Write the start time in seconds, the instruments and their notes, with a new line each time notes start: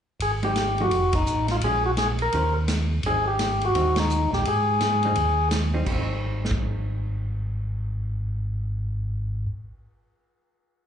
0.20 tonewheel organ G#1 G#4, ride
0.43 hollow-body jazz guitar G#3 C4 D#4 G4, tonewheel organ G4, ride
0.56 snare, hi-hat pedal, ride
0.78 hollow-body jazz guitar F3 A3 D#4 F#4, tonewheel organ F#4, ride
0.91 tonewheel organ F1, ride
1.13 tonewheel organ D#4, kick, ride
1.26 tonewheel organ A1, hi-hat pedal
1.48 tonewheel organ F4, snare, ride
1.61 tonewheel organ A#1 G#4, hollow-body jazz guitar G#3 C#4 F4, ride
1.86 tonewheel organ F#4
1.97 tonewheel organ G#4, snare, hi-hat pedal, ride
2.19 tonewheel organ A#4, ride
2.32 tonewheel organ D#2, hollow-body jazz guitar D#3 C#4 G4 C5, ride
2.68 snare, hi-hat pedal, ride
3.03 tonewheel organ G#1 G#4, hollow-body jazz guitar G3 C4, ride
3.08 hollow-body jazz guitar D#4
3.27 tonewheel organ G4
3.39 snare, hi-hat pedal, ride
3.61 ride
3.65 tonewheel organ F#4
3.74 tonewheel organ D#2, hollow-body jazz guitar G3 C4 D#4, ride
3.96 tonewheel organ D#4, snare, ride
4.10 hi-hat pedal
4.32 tonewheel organ A#1 G4, snare
4.45 tonewheel organ G#2 G#4, ride
4.80 snare, hi-hat pedal, ride
5.03 hollow-body jazz guitar G3 C4 D#4, ride
5.15 tonewheel organ D#2, ride
5.51 snare, hi-hat pedal, ride
5.74 hollow-body jazz guitar G3 C4 D#4
5.86 tonewheel organ G#1, hollow-body jazz guitar G3, kick, crash
5.92 hollow-body jazz guitar C4
5.97 hollow-body jazz guitar D#4
6.45 snare
6.51 kick